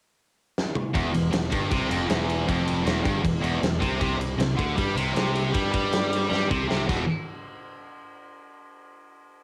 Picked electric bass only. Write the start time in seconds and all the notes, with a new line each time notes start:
0.95 E1
1.13 E1
1.32 E1
1.53 G1
1.71 C2
1.91 F1
2.10 E1
2.49 F1
2.85 E1
3.05 G1
3.24 E1
3.42 E1
3.61 E1
3.81 C2
4.01 C2
4.17 C2
4.37 C2
4.59 D2
4.78 G2
4.95 C2
5.14 C2
5.54 G2
5.74 G2
6.31 G2
6.51 C2
6.70 C2
6.89 E1